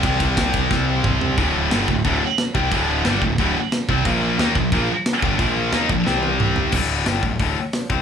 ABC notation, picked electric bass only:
X:1
M:4/4
L:1/8
Q:1/4=179
K:Dphr
V:1 name="Picked electric bass" clef=bass
C,, C,, C,,2 C,,2 C,, C,, | D,,,2 G,,, D,,, D,,, z2 C,, | D,,,2 G,,, D,,, D,,, z2 C,, | B,,,2 E,, B,,, B,,, z2 G,,, |
B,,,2 E,, B,,, C,,4 | [K:Cmix] D,,,2 G,,, D,,, D,,, z2 C,, |]